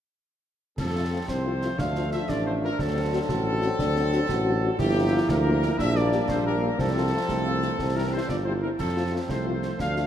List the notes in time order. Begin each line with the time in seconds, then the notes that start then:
0.78 F2 F3 C4 A4, concert bass drum, snare, crash
0.95 A3 C4 F4
1.12 A3 C4 F4
1.27 C2 C4 C5, concert bass drum, snare
1.45 A3 C4 F4
1.62 A3 C4 F4, snare
1.78 D2 A3 D4 F5, concert bass drum, snare
1.95 A3 D4 F4, snare
2.12 A3 D4 F4 E5, snare
2.28 A1 D4 D5, concert bass drum, snare
2.45 A3 D4 F4 C5
2.62 A3 D4 F4 A#4
2.78 D2 F#3 C4 A4, concert bass drum, snare
2.96 C4 D4 F#4
3.12 C4 D4 F#4
3.28 A1 F#4, concert bass drum, snare
3.45 C4 D4 F#4
3.62 C4 D4 F#4, snare
3.79 D2 D4, concert bass drum, snare
3.95 C4 D4 F#4, snare
4.12 C4 D4 F#4, snare
4.29 A1 F#4, concert bass drum, snare
4.46 C4 D4 F#4
4.62 C4 D4 F#4
4.78 G1 F3 A#3 E4 G4, concert bass drum, snare, crash
4.96 A#3 D4 F4
5.12 A#3 D4 F4
5.28 D2 A#4, concert bass drum, snare
5.46 A#3 D4 F4
5.62 A#3 D4 F4, snare
5.78 A#1 G3 D4 E5, concert bass drum, snare
5.95 A#3 D4 G4 D5, snare
6.12 A#3 D4 G4, snare
6.28 A#1 C5, concert bass drum, snare
6.46 A#3 D4 G4 A#4
6.63 A#3 D4 G4
6.78 C2 F3 C4 A4, concert bass drum, snare
6.95 A3 C4 F4
7.12 A3 C4 F4
7.28 C2 A3, concert bass drum, snare
7.45 A3 C4 F4
7.62 A3 C4 F4, snare
7.78 C2 E3 C4, concert bass drum, snare
7.96 G3 C4 E4 A#4
8.12 G3 C4 E4 C5
8.28 G1 F4 D5, concert bass drum, snare
8.45 G3 C4 E4 C5
8.61 G3 C4 E4 A#4
8.79 F2 F3 C4 A4, concert bass drum, snare, crash
8.96 A3 C4 F4
9.12 A3 C4 F4
9.29 C2 A3 C5, concert bass drum, snare
9.46 A3 C4 F4
9.62 A3 C4 F4, snare
9.79 D2 A3 D4 F5, concert bass drum, snare
9.96 A3 D4 F4, snare